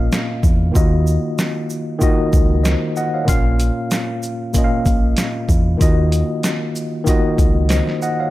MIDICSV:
0, 0, Header, 1, 4, 480
1, 0, Start_track
1, 0, Tempo, 631579
1, 573, Time_signature, 4, 2, 24, 8
1, 6310, End_track
2, 0, Start_track
2, 0, Title_t, "Tine electric piano"
2, 0, Program_c, 0, 4
2, 0, Control_c, 0, 64, 127
2, 0, Note_on_c, 0, 46, 78
2, 0, Note_on_c, 0, 58, 72
2, 0, Note_on_c, 0, 61, 73
2, 0, Note_on_c, 0, 65, 71
2, 0, Note_on_c, 0, 75, 73
2, 0, Note_on_c, 0, 77, 84
2, 218, Note_off_c, 0, 46, 0
2, 222, Note_off_c, 0, 58, 0
2, 227, Note_off_c, 0, 61, 0
2, 232, Note_off_c, 0, 65, 0
2, 261, Note_off_c, 0, 77, 0
2, 544, Note_on_c, 0, 51, 78
2, 553, Note_on_c, 0, 58, 75
2, 562, Note_on_c, 0, 65, 73
2, 571, Note_on_c, 0, 66, 71
2, 580, Note_off_c, 0, 75, 0
2, 580, Note_on_c, 0, 75, 88
2, 582, Control_c, 0, 64, 0
2, 695, Control_c, 0, 64, 127
2, 1169, Note_off_c, 0, 51, 0
2, 1174, Note_off_c, 0, 58, 0
2, 1178, Note_off_c, 0, 65, 0
2, 1183, Note_off_c, 0, 66, 0
2, 1187, Note_off_c, 0, 75, 0
2, 1508, Note_on_c, 0, 51, 95
2, 1517, Note_on_c, 0, 58, 78
2, 1526, Note_on_c, 0, 65, 79
2, 1535, Note_on_c, 0, 66, 85
2, 1544, Note_on_c, 0, 75, 101
2, 1993, Note_off_c, 0, 75, 0
2, 2002, Note_on_c, 0, 75, 63
2, 2007, Note_on_c, 0, 72, 55
2, 2131, Note_off_c, 0, 51, 0
2, 2136, Note_off_c, 0, 58, 0
2, 2140, Note_off_c, 0, 65, 0
2, 2145, Note_off_c, 0, 66, 0
2, 2235, Note_off_c, 0, 75, 0
2, 2238, Note_off_c, 0, 72, 0
2, 2256, Note_on_c, 0, 78, 77
2, 2260, Note_on_c, 0, 75, 67
2, 2378, Note_off_c, 0, 78, 0
2, 2380, Note_off_c, 0, 75, 0
2, 2388, Note_on_c, 0, 77, 60
2, 2393, Note_on_c, 0, 73, 54
2, 2463, Note_on_c, 0, 46, 88
2, 2473, Note_on_c, 0, 58, 85
2, 2482, Note_on_c, 0, 61, 84
2, 2491, Note_off_c, 0, 77, 0
2, 2492, Note_on_c, 0, 65, 87
2, 2500, Note_on_c, 0, 77, 99
2, 2503, Control_c, 0, 64, 0
2, 2616, Note_off_c, 0, 73, 0
2, 2621, Control_c, 0, 64, 127
2, 3089, Note_off_c, 0, 46, 0
2, 3094, Note_off_c, 0, 58, 0
2, 3099, Note_off_c, 0, 61, 0
2, 3103, Note_off_c, 0, 65, 0
2, 3107, Note_off_c, 0, 77, 0
2, 3442, Note_on_c, 0, 46, 78
2, 3450, Note_on_c, 0, 58, 70
2, 3459, Note_on_c, 0, 61, 73
2, 3469, Note_on_c, 0, 65, 69
2, 3478, Note_on_c, 0, 75, 74
2, 3519, Note_off_c, 0, 75, 0
2, 3527, Note_on_c, 0, 77, 84
2, 4058, Note_off_c, 0, 46, 0
2, 4062, Note_off_c, 0, 58, 0
2, 4067, Note_off_c, 0, 61, 0
2, 4072, Note_off_c, 0, 65, 0
2, 4101, Note_off_c, 0, 77, 0
2, 4386, Note_on_c, 0, 51, 78
2, 4394, Note_on_c, 0, 58, 74
2, 4403, Note_on_c, 0, 65, 74
2, 4413, Note_on_c, 0, 66, 74
2, 4423, Control_c, 0, 64, 0
2, 4423, Note_on_c, 0, 75, 90
2, 4543, Control_c, 0, 64, 127
2, 5010, Note_off_c, 0, 51, 0
2, 5014, Note_off_c, 0, 58, 0
2, 5019, Note_off_c, 0, 65, 0
2, 5024, Note_off_c, 0, 66, 0
2, 5029, Note_off_c, 0, 75, 0
2, 5351, Note_on_c, 0, 51, 94
2, 5360, Note_on_c, 0, 58, 82
2, 5369, Note_on_c, 0, 65, 80
2, 5378, Note_on_c, 0, 66, 84
2, 5388, Note_on_c, 0, 75, 101
2, 5835, Note_off_c, 0, 75, 0
2, 5844, Note_on_c, 0, 75, 67
2, 5848, Note_on_c, 0, 72, 56
2, 5973, Note_off_c, 0, 51, 0
2, 5977, Note_off_c, 0, 58, 0
2, 5982, Note_off_c, 0, 65, 0
2, 5987, Note_off_c, 0, 66, 0
2, 6076, Note_off_c, 0, 75, 0
2, 6078, Note_off_c, 0, 72, 0
2, 6099, Note_on_c, 0, 78, 76
2, 6104, Note_on_c, 0, 75, 66
2, 6219, Note_off_c, 0, 78, 0
2, 6222, Note_off_c, 0, 75, 0
2, 6231, Note_on_c, 0, 77, 61
2, 6236, Note_on_c, 0, 73, 55
2, 6310, Note_off_c, 0, 73, 0
2, 6310, Note_off_c, 0, 77, 0
2, 6310, End_track
3, 0, Start_track
3, 0, Title_t, "Fingered electric bass"
3, 0, Program_c, 1, 33
3, 331, Note_on_c, 1, 40, 92
3, 535, Note_off_c, 1, 40, 0
3, 574, Note_on_c, 1, 39, 105
3, 887, Note_off_c, 1, 39, 0
3, 1772, Note_on_c, 1, 37, 99
3, 2086, Note_off_c, 1, 37, 0
3, 2494, Note_on_c, 1, 34, 105
3, 2807, Note_off_c, 1, 34, 0
3, 3693, Note_on_c, 1, 34, 99
3, 3897, Note_off_c, 1, 34, 0
3, 4171, Note_on_c, 1, 40, 89
3, 4375, Note_off_c, 1, 40, 0
3, 4416, Note_on_c, 1, 39, 103
3, 4728, Note_off_c, 1, 39, 0
3, 5612, Note_on_c, 1, 37, 96
3, 5926, Note_off_c, 1, 37, 0
3, 6310, End_track
4, 0, Start_track
4, 0, Title_t, "Drums"
4, 93, Note_on_c, 9, 82, 69
4, 96, Note_on_c, 9, 38, 106
4, 169, Note_off_c, 9, 82, 0
4, 172, Note_off_c, 9, 38, 0
4, 329, Note_on_c, 9, 36, 91
4, 332, Note_on_c, 9, 82, 49
4, 405, Note_off_c, 9, 36, 0
4, 408, Note_off_c, 9, 82, 0
4, 573, Note_on_c, 9, 36, 117
4, 574, Note_on_c, 9, 82, 69
4, 649, Note_off_c, 9, 36, 0
4, 650, Note_off_c, 9, 82, 0
4, 813, Note_on_c, 9, 82, 53
4, 889, Note_off_c, 9, 82, 0
4, 1052, Note_on_c, 9, 82, 74
4, 1055, Note_on_c, 9, 38, 120
4, 1128, Note_off_c, 9, 82, 0
4, 1131, Note_off_c, 9, 38, 0
4, 1291, Note_on_c, 9, 82, 50
4, 1367, Note_off_c, 9, 82, 0
4, 1529, Note_on_c, 9, 82, 73
4, 1532, Note_on_c, 9, 36, 95
4, 1605, Note_off_c, 9, 82, 0
4, 1608, Note_off_c, 9, 36, 0
4, 1770, Note_on_c, 9, 82, 51
4, 1771, Note_on_c, 9, 36, 111
4, 1846, Note_off_c, 9, 82, 0
4, 1847, Note_off_c, 9, 36, 0
4, 2013, Note_on_c, 9, 82, 67
4, 2016, Note_on_c, 9, 38, 104
4, 2089, Note_off_c, 9, 82, 0
4, 2092, Note_off_c, 9, 38, 0
4, 2253, Note_on_c, 9, 82, 51
4, 2329, Note_off_c, 9, 82, 0
4, 2492, Note_on_c, 9, 42, 98
4, 2493, Note_on_c, 9, 36, 114
4, 2496, Note_on_c, 9, 82, 73
4, 2568, Note_off_c, 9, 42, 0
4, 2569, Note_off_c, 9, 36, 0
4, 2572, Note_off_c, 9, 82, 0
4, 2733, Note_on_c, 9, 42, 57
4, 2733, Note_on_c, 9, 82, 52
4, 2809, Note_off_c, 9, 42, 0
4, 2809, Note_off_c, 9, 82, 0
4, 2971, Note_on_c, 9, 42, 66
4, 2972, Note_on_c, 9, 82, 73
4, 2977, Note_on_c, 9, 38, 121
4, 3047, Note_off_c, 9, 42, 0
4, 3048, Note_off_c, 9, 82, 0
4, 3053, Note_off_c, 9, 38, 0
4, 3212, Note_on_c, 9, 82, 50
4, 3217, Note_off_c, 9, 82, 0
4, 3217, Note_on_c, 9, 82, 53
4, 3293, Note_off_c, 9, 82, 0
4, 3450, Note_on_c, 9, 82, 72
4, 3454, Note_on_c, 9, 36, 92
4, 3458, Note_on_c, 9, 42, 81
4, 3526, Note_off_c, 9, 82, 0
4, 3530, Note_off_c, 9, 36, 0
4, 3534, Note_off_c, 9, 42, 0
4, 3691, Note_on_c, 9, 82, 53
4, 3692, Note_on_c, 9, 36, 104
4, 3697, Note_off_c, 9, 82, 0
4, 3697, Note_on_c, 9, 42, 43
4, 3697, Note_on_c, 9, 82, 43
4, 3768, Note_off_c, 9, 36, 0
4, 3773, Note_off_c, 9, 42, 0
4, 3773, Note_off_c, 9, 82, 0
4, 3926, Note_on_c, 9, 42, 83
4, 3933, Note_on_c, 9, 82, 70
4, 3936, Note_on_c, 9, 38, 105
4, 4002, Note_off_c, 9, 42, 0
4, 4009, Note_off_c, 9, 82, 0
4, 4012, Note_off_c, 9, 38, 0
4, 4170, Note_on_c, 9, 36, 87
4, 4173, Note_on_c, 9, 82, 51
4, 4177, Note_off_c, 9, 82, 0
4, 4177, Note_on_c, 9, 82, 51
4, 4246, Note_off_c, 9, 36, 0
4, 4253, Note_off_c, 9, 82, 0
4, 4414, Note_on_c, 9, 36, 117
4, 4415, Note_on_c, 9, 42, 96
4, 4417, Note_on_c, 9, 82, 74
4, 4490, Note_off_c, 9, 36, 0
4, 4491, Note_off_c, 9, 42, 0
4, 4493, Note_off_c, 9, 82, 0
4, 4653, Note_on_c, 9, 42, 57
4, 4653, Note_on_c, 9, 82, 56
4, 4656, Note_off_c, 9, 82, 0
4, 4656, Note_on_c, 9, 82, 54
4, 4729, Note_off_c, 9, 42, 0
4, 4732, Note_off_c, 9, 82, 0
4, 4890, Note_on_c, 9, 42, 66
4, 4894, Note_on_c, 9, 82, 73
4, 4895, Note_on_c, 9, 38, 118
4, 4966, Note_off_c, 9, 42, 0
4, 4970, Note_off_c, 9, 82, 0
4, 4971, Note_off_c, 9, 38, 0
4, 5134, Note_on_c, 9, 82, 51
4, 5135, Note_off_c, 9, 82, 0
4, 5135, Note_on_c, 9, 82, 52
4, 5211, Note_off_c, 9, 82, 0
4, 5371, Note_on_c, 9, 82, 75
4, 5374, Note_on_c, 9, 36, 93
4, 5377, Note_on_c, 9, 42, 85
4, 5447, Note_off_c, 9, 82, 0
4, 5450, Note_off_c, 9, 36, 0
4, 5453, Note_off_c, 9, 42, 0
4, 5611, Note_on_c, 9, 36, 106
4, 5614, Note_on_c, 9, 82, 51
4, 5616, Note_off_c, 9, 82, 0
4, 5616, Note_on_c, 9, 42, 43
4, 5616, Note_on_c, 9, 82, 45
4, 5687, Note_off_c, 9, 36, 0
4, 5692, Note_off_c, 9, 42, 0
4, 5692, Note_off_c, 9, 82, 0
4, 5844, Note_on_c, 9, 42, 83
4, 5854, Note_on_c, 9, 38, 102
4, 5855, Note_on_c, 9, 82, 68
4, 5920, Note_off_c, 9, 42, 0
4, 5930, Note_off_c, 9, 38, 0
4, 5931, Note_off_c, 9, 82, 0
4, 5984, Note_on_c, 9, 38, 39
4, 6060, Note_off_c, 9, 38, 0
4, 6095, Note_on_c, 9, 82, 49
4, 6096, Note_off_c, 9, 82, 0
4, 6096, Note_on_c, 9, 82, 50
4, 6172, Note_off_c, 9, 82, 0
4, 6310, End_track
0, 0, End_of_file